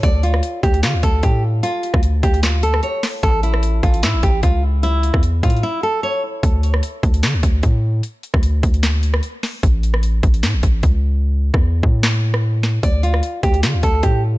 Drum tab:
HH |x-----x-----x-----x--x--x-----x-----x-----------|x-----x-----x-----x--x--x-----x-----x-----o-----|x-----x-----x-----x--x--x-----x-----x-----------|x-----x-----x-----x-x-x-------------------------|
SD |---------r--------------o-----------------------|---------r--------------o--------r--------o-----|---------r--------------o-----------------------|---------r--------------------------------------|
BD |o-----------------o-----------o-----o-----------|---------o--------o-----------------------------|o-----------------o-----------o-----o-----------|---------o--------o-----------------------------|

HH |x-----x-----x-----x--x--x-----x-----x-----------|x-----x-----x-----x--x--x-----x-----x-----o-----|x-----x-----x-----x--x--x-----x-----x-----------|------------------------------------------------|
SD |---------r--------------o-----------------------|---------r--------------o--------r--------o-----|---------r--------------o-----------------------|---------r--------------o--------r--------o-----|
BD |o-----------------o-----------o-----o-----------|---------o--------o-----------------------------|o-----------------o-----------o-----o-----------|---------o--------o-----------------------------|

HH |x-----x-----x-----x--x--x-----x-----x-----------|
SD |---------r--------------o-----------------------|
BD |o-----------------o-----------o-----o-----------|